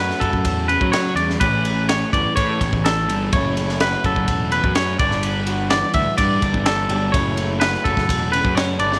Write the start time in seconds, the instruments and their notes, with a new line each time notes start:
Already playing: picked electric bass F#2, clean electric guitar F#2 A3 C#4 F#4 B4
0.10 snare
0.20 picked electric bass F#2, clean electric guitar F#3 A4, kick, ride
0.33 picked electric bass F#2, kick
0.45 picked electric bass E2, kick, ride
0.68 clean electric guitar C#3 B4, ride
0.81 picked electric bass F#3, kick
0.92 clean electric guitar F#2 C#5, snare, ride
1.15 picked electric bass E2, clean electric guitar G2 D5, ride
1.30 snare
1.40 picked electric bass A1, clean electric guitar A2 C#4 G4 B4, kick, ride
1.65 ride
1.89 clean electric guitar G4 C#5, snare, ride
2.13 picked electric bass G1, clean electric guitar E3 D5, kick, ride
2.36 picked electric bass A2, clean electric guitar C#5, kick, ride
2.61 picked electric bass A1, clean electric guitar E2, kick, ride
2.72 picked electric bass A1, kick
2.85 clean electric guitar A2 A4, snare, ride
3.08 picked electric bass G1, clean electric guitar G2, ride
3.33 picked electric bass F#1, clean electric guitar F#2 A3 C#4 E4 C#5, kick, ride
3.57 ride
3.69 snare
3.80 clean electric guitar F#4 B4, snare, ride
4.04 picked electric bass F#1, clean electric guitar F#3 A4, kick, ride
4.16 picked electric bass F#1, kick
4.28 picked electric bass E1, kick, ride
4.52 clean electric guitar E2 B4, ride
4.64 picked electric bass F#2, kick
4.75 clean electric guitar F#2 C#5, snare, ride
4.99 picked electric bass G1, clean electric guitar G2 D4 G4 D5, kick, ride
5.11 snare
5.23 clean electric guitar B4, ride
5.47 clean electric guitar F#4, ride
5.70 clean electric guitar E3 D5, snare, ride
5.94 picked electric bass D2, clean electric guitar E5, kick, ride
6.17 clean electric guitar G2 D5, picked electric bass G2, kick, ride
6.42 picked electric bass G1, clean electric guitar D4, kick, ride
6.54 picked electric bass G1, kick
6.66 clean electric guitar G4 A4, snare, ride
6.89 picked electric bass G1, clean electric guitar G2 F#3 D4 G4, ride
7.12 picked electric bass F#1, clean electric guitar F#2 A3 C#4 E4 C#5, kick, ride
7.37 ride
7.60 clean electric guitar F#4 B4, snare, ride
7.74 snare
7.84 picked electric bass F#1, clean electric guitar F#3 A4, kick, ride
7.97 picked electric bass F#1, kick, snare
8.09 picked electric bass E1, kick, ride
8.31 clean electric guitar C#3 B4, ride
8.45 picked electric bass F#2, kick
8.55 clean electric guitar C#4 C#5, snare, ride
8.79 picked electric bass G1, clean electric guitar D4 D5, ride
8.92 clean electric guitar E4, snare